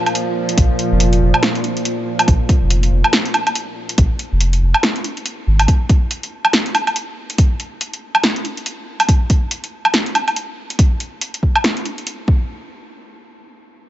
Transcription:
Already playing: synth drone A#2 F3
0.06 closed hi-hat, low woodblock
0.15 closed hi-hat
0.49 closed hi-hat
0.58 sub bass A#1, kick, closed hi-hat
0.79 closed hi-hat
0.92 sub bass F1
1.00 closed hi-hat
1.13 closed hi-hat
1.21 sub bass F1
1.34 low woodblock
1.43 snare, closed hi-hat
1.55 closed hi-hat
1.64 closed hi-hat
1.77 closed hi-hat
1.85 closed hi-hat
2.19 closed hi-hat, low woodblock
2.28 sub bass A#1, kick, closed hi-hat
2.49 kick, closed hi-hat
2.62 sub bass F1
2.70 closed hi-hat
2.83 closed hi-hat
2.92 sub bass F1
3.04 low woodblock
3.13 snare, closed hi-hat
3.25 closed hi-hat
3.34 closed hi-hat, low woodblock
3.47 closed hi-hat, low woodblock
3.55 closed hi-hat
3.89 closed hi-hat
3.98 sub bass A#1, kick, closed hi-hat
4.19 closed hi-hat
4.32 sub bass F1
4.41 closed hi-hat
4.53 closed hi-hat
4.62 sub bass F1
4.74 low woodblock
4.83 snare, closed hi-hat
4.96 closed hi-hat
5.04 closed hi-hat
5.17 closed hi-hat
5.26 closed hi-hat
5.47 sub bass G#1
5.59 closed hi-hat, low woodblock
5.68 kick, closed hi-hat
5.89 kick, closed hi-hat
6.11 closed hi-hat
6.23 closed hi-hat
6.45 low woodblock
6.53 snare, closed hi-hat
6.66 closed hi-hat
6.75 closed hi-hat, low woodblock
6.87 closed hi-hat, low woodblock
6.96 closed hi-hat
7.30 closed hi-hat
7.38 kick, closed hi-hat
7.60 closed hi-hat
7.81 closed hi-hat
7.93 closed hi-hat
8.15 low woodblock
8.24 snare, closed hi-hat
8.36 closed hi-hat
8.45 closed hi-hat
8.57 closed hi-hat
8.66 closed hi-hat
9.00 closed hi-hat, low woodblock
9.09 kick, closed hi-hat
9.30 kick, closed hi-hat
9.51 closed hi-hat
9.64 closed hi-hat
9.85 low woodblock
9.94 snare, closed hi-hat
10.06 closed hi-hat
10.15 closed hi-hat, low woodblock
10.28 closed hi-hat, low woodblock
10.36 closed hi-hat
10.70 closed hi-hat
10.79 kick, closed hi-hat
11.00 closed hi-hat
11.21 closed hi-hat
11.34 closed hi-hat
11.43 kick
11.55 low woodblock
11.64 snare, closed hi-hat
11.77 closed hi-hat
11.85 closed hi-hat
11.98 closed hi-hat
12.07 closed hi-hat
12.28 kick

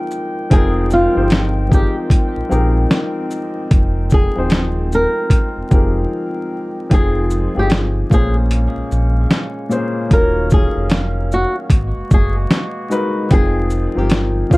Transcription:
Already playing: woodwind section D#3 G#3 A#3 G5, upright piano F3 C4 D#4 G4 G#4 A#4
0.11 shaker
0.50 sub bass F1, upright piano F3 C4 D#4 G#4 A#4 G5, woodwind section C4, nylon-string guitar G#4, kick, closed hi-hat
0.91 nylon-string guitar F4, shaker
1.14 sub bass G1, upright piano F3 C4 D#4 G4 G#4 C5
1.30 snare, closed hi-hat
1.69 upright piano F3 C4 D#4 G4 G#4 A#4, kick, shaker
1.74 nylon-string guitar G4
2.10 kick, closed hi-hat
2.36 sub bass A#1
2.49 sub bass A#1, upright piano F3 C4 D#4 G4 G#4 A#4, shaker
2.91 snare, closed hi-hat
3.31 shaker
3.71 sub bass F1, kick, closed hi-hat
4.10 nylon-string guitar G#4, kick, shaker
4.35 sub bass D#1, upright piano F3 C4 D#4 G#4 C5 G5
4.50 snare, closed hi-hat
4.92 nylon-string guitar A#4, shaker
5.30 kick, closed hi-hat
5.57 sub bass F1
5.70 sub bass F1, upright piano F3 C4 D#4 G4 G#4 A#4, kick, shaker
6.89 sub bass F1, woodwind section D#3 F3 G#3 F4, upright piano F3 C4 D#4 G#4 G5, kick, closed hi-hat
6.94 nylon-string guitar G#4
7.30 shaker
7.55 sub bass G1, upright piano F3 C4 D#4 G4 G#4
7.59 nylon-string guitar G4
7.70 snare, closed hi-hat
8.10 sub bass A#1, upright piano A#2 A#3 C#4 G#4 C5, woodwind section C#3 G#3 A#3 C#4, nylon-string guitar G#4, kick, shaker
8.51 closed hi-hat
8.77 sub bass A#1
8.92 sub bass A#1, shaker
9.31 snare, closed hi-hat
9.69 upright piano A#2 A#3 C#4 G#4 C5, shaker
10.10 sub bass D#1, upright piano D#3 A#3 F4 F#4 C#5, woodwind section D#3 F#3 C#4 F5, nylon-string guitar A#4, kick, closed hi-hat
10.50 nylon-string guitar G#4, kick, shaker
10.76 sub bass F1
10.90 snare, closed hi-hat
11.32 nylon-string guitar F#4, shaker
11.70 sub bass G#1, woodwind section B2 G#3 A#3 F#4, kick, closed hi-hat
11.96 sub bass F#1
12.11 sub bass F#1, nylon-string guitar G#4, kick, shaker
12.51 snare, closed hi-hat
12.89 upright piano G#3 D#4 F#4 A#4 B4, shaker
13.29 sub bass F1, woodwind section D#3 F3 F4, upright piano F3 C4 D#4 G#4 G5, kick, closed hi-hat
13.33 nylon-string guitar G#4
13.70 shaker
13.94 sub bass G1, upright piano F3 C4 D#4 G4 A#4, nylon-string guitar G4
14.10 snare, closed hi-hat
14.50 sub bass A#1, upright piano A#2 A#3 C#4 G#4 C5, woodwind section C#3 G#3 A#3 C#4, nylon-string guitar F4, kick, shaker

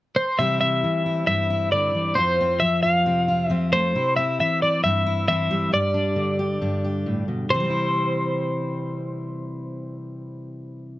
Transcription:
0.16 clean electric guitar C5
0.39 steel-string acoustic guitar C3 E3 G3 C4 E4, clean electric guitar E5
0.61 steel-string acoustic guitar C4, clean electric guitar E5
0.84 steel-string acoustic guitar E3
1.06 steel-string acoustic guitar E4
1.27 steel-string acoustic guitar G2 C4, clean electric guitar E5
1.50 steel-string acoustic guitar E4
1.72 steel-string acoustic guitar D3, clean electric guitar D5
1.95 steel-string acoustic guitar E3
2.15 steel-string acoustic guitar F2 F4, clean electric guitar C5
2.41 steel-string acoustic guitar C4
2.60 steel-string acoustic guitar F3, clean electric guitar E5
2.83 steel-string acoustic guitar F4, clean electric guitar F5
3.06 steel-string acoustic guitar C3 C4
3.28 steel-string acoustic guitar F4
3.46 steel-string acoustic guitar F3, clean electric guitar E5
3.51 steel-string acoustic guitar C4
3.73 steel-string acoustic guitar A3, clean electric guitar C5
3.95 steel-string acoustic guitar C3 E4
4.16 steel-string acoustic guitar C4, clean electric guitar E5
4.39 steel-string acoustic guitar E3, clean electric guitar E5
4.62 steel-string acoustic guitar E4, clean electric guitar D5
4.84 steel-string acoustic guitar G2 C4, clean electric guitar E5
5.06 steel-string acoustic guitar E4
5.28 steel-string acoustic guitar E3 C4, clean electric guitar E5
5.51 steel-string acoustic guitar G3
5.72 steel-string acoustic guitar G2 G4, clean electric guitar D5
5.94 steel-string acoustic guitar D4
6.16 steel-string acoustic guitar D3
6.39 steel-string acoustic guitar G4
6.61 steel-string acoustic guitar G2 D4
6.84 steel-string acoustic guitar G4
7.06 steel-string acoustic guitar A2
7.28 steel-string acoustic guitar B2
7.50 steel-string acoustic guitar C3, clean electric guitar C5
7.54 steel-string acoustic guitar E3
7.60 steel-string acoustic guitar G3
7.65 steel-string acoustic guitar C4
7.70 steel-string acoustic guitar E4

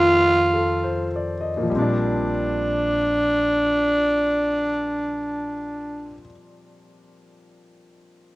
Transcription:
Already playing: upright bass F2, grand piano D#3 F3 A3 C4 F4, tenor saxophone F4
0.53 grand piano A4
0.83 grand piano C5
1.16 grand piano D5
1.41 grand piano D#5
1.57 grand piano A#2
1.63 grand piano F3
1.70 upright bass A#1, grand piano G3
1.75 grand piano C4, tenor saxophone D4
1.82 grand piano D4

